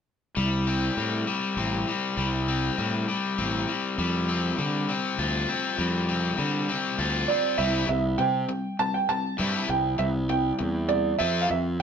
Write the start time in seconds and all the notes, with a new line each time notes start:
0.36 C2 G3
0.67 C4
0.97 A2 G3
1.27 G3
1.57 A1 C4
1.88 G3
2.17 C2 G3
2.48 C4
2.78 A2 G3
3.08 G3
3.38 A1 C4
3.68 G3
3.98 F2 G3
4.29 C4
4.58 D3 G3
4.89 C4
5.18 D2 F4
5.49 C4
5.78 F2 G3
6.09 C4
6.38 D3 G3
6.69 C4
6.99 D2 F4
7.28 C4 D5
7.58 C2 G3 C4 E4 E5
7.88 C2 G3 C4 E5
8.18 C3 G3 C4 G5
8.49 G3 C4
8.79 G3 C4 A5
8.94 G5
9.09 G3 C4 A5
9.38 G2 G3 C4 E4
9.68 C2 G3 C4 G5
9.98 C2 G3 C4 E5
10.29 G3 C4 G5
10.59 E2 G3 C4
10.89 G3 C4 D5
11.19 F2 F3 C4 F4 E5
11.42 F5
11.49 F2 F3 C4 E5